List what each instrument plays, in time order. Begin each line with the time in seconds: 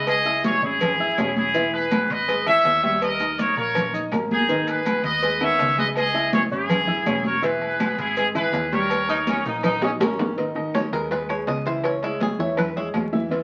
Already playing: fingered electric bass C#2, grand piano G#3 G#4 G#5
0.07 trumpet section G#4 D#5, cowbell, high conga, low agogo, claves, maracas
0.25 grand piano E4 E5 E6, cowbell, high conga, low agogo
0.44 trumpet section G#4 C#5, cowbell, high conga, low timbale, maracas
0.62 fingered electric bass G#1, grand piano C#4 C#5 C#6, trumpet section E4 G#4, high conga, maracas
0.81 cowbell, high conga, low conga, low agogo, claves, maracas
1.00 grand piano E4 E5 E6, high conga
1.18 fingered electric bass E1, grand piano C#4 C#5 C#6, cowbell, high conga, low timbale, low agogo, claves, maracas
1.36 trumpet section E4 G#4, high conga, maracas
1.54 grand piano E3 E4 E5, cowbell, high conga, maracas
1.73 trumpet section G#4 B4, high conga, low agogo
1.91 grand piano B3 B4 B5, cowbell, high conga, low timbale, low agogo, claves, maracas
2.09 fingered electric bass G#1, trumpet section B4 D#5, cowbell, high conga, low agogo, maracas
2.28 grand piano G#3 G#4 G#5, cowbell, high conga, low agogo, maracas
2.46 grand piano E3 E4 E5, trumpet section C#5 E5, high conga, low agogo, claves, maracas
2.65 fingered electric bass D#2, cowbell, high conga, low timbale, low agogo, maracas
2.83 grand piano G3 G4 G5, trumpet section C#5 E5, cowbell, high conga, maracas
3.02 trumpet section A#4 D#5, cowbell, high conga, low agogo, claves, maracas
3.19 grand piano D#4 D#5 D#6, cowbell, high conga, low agogo, maracas
3.38 trumpet section A#4 C#5, cowbell, high conga, low timbale, maracas
3.57 fingered electric bass A#1, grand piano A#3 A#4 A#5, trumpet section A#4 C#5, high conga, maracas
3.75 cowbell, high conga, low conga, low agogo, claves, maracas
3.94 grand piano D#4 D#5 D#6, high conga, maracas
4.12 fingered electric bass G#1, grand piano A#3 A#4 A#5, cowbell, high conga, low timbale, low agogo, claves, maracas
4.31 trumpet section D#4 G#4, high conga, maracas
4.49 grand piano D#3 D#4 D#5, cowbell, maracas
4.67 trumpet section G#4 B4, high conga, low agogo, maracas
4.85 grand piano B3 B4 B5, cowbell, high conga, low timbale, low agogo, claves, maracas
5.04 fingered electric bass D#2, trumpet section B4 D#5, cowbell, high conga, low agogo, maracas
5.22 grand piano G#3 G#4 G#5, cowbell, high conga, low agogo, maracas
5.41 grand piano D#3 B3 B4, trumpet section C#5 E5, high conga, low agogo, claves
5.59 fingered electric bass C#2, cowbell, high conga, low timbale, low agogo, maracas
5.77 grand piano G#3 G#4 G#5, trumpet section B4 D#5, cowbell, high conga, maracas
5.96 trumpet section G#4 D#5, cowbell, high conga, low agogo, claves, maracas
6.14 grand piano E4 E5 E6, cowbell, high conga, low agogo
6.33 trumpet section G#4 C#5, cowbell, high conga, low timbale, maracas
6.51 fingered electric bass G#1, grand piano C#4 C#5 C#6, trumpet section E4 G#4, high conga, maracas
6.69 cowbell, high conga, low conga, low agogo, claves, maracas
6.87 grand piano E4 E5 E6, high conga, low conga
7.06 fingered electric bass E1, grand piano C#4 C#5 C#6, cowbell, high conga, low timbale, low agogo, claves, maracas
7.24 trumpet section A#4 C#5, high conga, maracas
7.42 grand piano E3 E4 E5, trumpet section G#4 B4, cowbell, high conga, maracas
7.61 high conga, low agogo
7.80 grand piano B3 B4 B5, cowbell, high conga, low timbale, low agogo, claves, maracas
7.98 fingered electric bass G#1, trumpet section E4 G#4, cowbell, high conga, low agogo, maracas
8.16 grand piano G#3 G#4 G#5, trumpet section E4 G#4, cowbell, high conga, low agogo, maracas
8.35 grand piano E3 E4 E5, trumpet section G#4 B4, high conga, low agogo, claves, maracas
8.53 fingered electric bass D#2, cowbell, high conga, low timbale, low agogo, maracas
8.72 grand piano G3 G4 G5, trumpet section A#4 C#5, cowbell, high conga, maracas
8.90 cowbell, high conga, low agogo, claves, maracas
9.08 grand piano D#4 D#5 D#6, saxophone section D#4, cowbell, high conga, low agogo, maracas
9.27 saxophone section C#4, cowbell, high conga, low timbale, maracas
9.45 fingered electric bass A#1, grand piano A#3 A#4 A#5, saxophone section D#4, high conga, high timbale, maracas
9.63 saxophone section D#4, cowbell, high conga, low conga, high timbale, low agogo, claves, maracas
9.82 saxophone section C#4, grand piano D#4 D#5 D#6, high bongo, high conga, low timbale
10.00 fingered electric bass G#1, grand piano A#3 A#4 A#5, saxophone section C#4, cowbell, high bongo, high conga, low timbale, low agogo, claves, maracas
10.19 low bongo, high conga, low timbale, maracas
10.37 grand piano D#3 D#4 D#5, cowbell, high conga
10.55 grand piano D#3 D#4 D#5, high conga, low agogo
10.74 five-string banjo C#5, cowbell, high conga, low timbale, low agogo, claves
10.92 fingered electric bass D#2, grand piano G#3 G#4 B4, five-string banjo A#4, cowbell, high conga, low agogo
11.11 grand piano G#3 G#4 B4, five-string banjo B4, cowbell, high conga, low agogo
11.29 grand piano G#3 G#4 B4, five-string banjo C#5, high conga, low agogo, claves
11.47 fingered electric bass C#2, five-string banjo D#5, cowbell, high conga, low timbale, low agogo
11.66 grand piano E3 E4 E5, five-string banjo C5, cowbell
11.84 five-string banjo C#5, cowbell, high conga, low agogo, claves
12.03 grand piano G#3 G#4 C#5, five-string banjo E4, cowbell, high conga, low agogo
12.20 five-string banjo G#4, cowbell, high conga, low timbale
12.39 fingered electric bass E2, grand piano E3 E4 E5, five-string banjo C#5, high conga
12.57 five-string banjo B4, cowbell, high conga, low conga, low agogo, claves
12.76 grand piano G#3 G#4 C#5, five-string banjo E4, high conga
12.94 fingered electric bass E2, cowbell, high conga, low timbale, low agogo, claves
13.13 grand piano E3 E4 E5, high conga
13.30 grand piano E3 E4 E5, cowbell, high conga